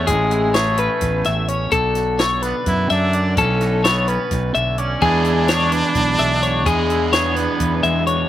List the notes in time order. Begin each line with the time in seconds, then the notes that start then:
Already playing: A3 C#4
0.07 A1 A2 G#3 G#4, kick, closed hi-hat
0.31 E4, closed hi-hat
0.54 A3 G#4 C#5, snare, closed hi-hat
0.78 C#4 B4, closed hi-hat
1.01 A1 E2, kick, snare, closed hi-hat
1.24 A1 A3 E5, snare, closed hi-hat
1.48 C#4 C#5, closed hi-hat
1.71 B1 B2 D3 D4 F#4 A4, kick, closed hi-hat
1.95 F#4, snare, closed hi-hat
2.19 A4 C#5, snare, closed hi-hat
2.42 B3 D4 B4, snare, closed hi-hat
2.66 F#2 B2 E4, kick, snare, closed hi-hat
2.90 F#2 D3 D4 E5, snare, closed hi-hat
3.13 D4 D5, closed hi-hat
3.37 B1 B2 C#4 A4, kick, closed hi-hat
3.61 F#4, snare, closed hi-hat
3.84 B3 A4 C#5, snare, closed hi-hat
4.08 C#4 B4, closed hi-hat
4.31 B1 B2, kick, snare, closed hi-hat
4.55 B1 D3 E5, closed hi-hat
4.78 C#4 D5, closed hi-hat
5.01 E2 E3 G#3 B3 D4 E4 G#4 B4, kick, crash
5.25 E4, closed hi-hat
5.48 G#4 C#5, snare, closed hi-hat
5.72 D4 B4, snare, closed hi-hat
5.95 B1 E2, kick, closed hi-hat
6.18 B1 G#3 E5, closed hi-hat
6.43 D4 C#5, snare, closed hi-hat
6.66 E2 E3 G#3 B3 D4 G#4 B4, kick, closed hi-hat
6.90 E4, closed hi-hat
7.13 B3 G#4 C#5, snare, closed hi-hat
7.36 D4 B4, snare, closed hi-hat
7.60 E2, kick, closed hi-hat
7.83 E2 G#3 E5, closed hi-hat
8.07 D4 C#5, closed hi-hat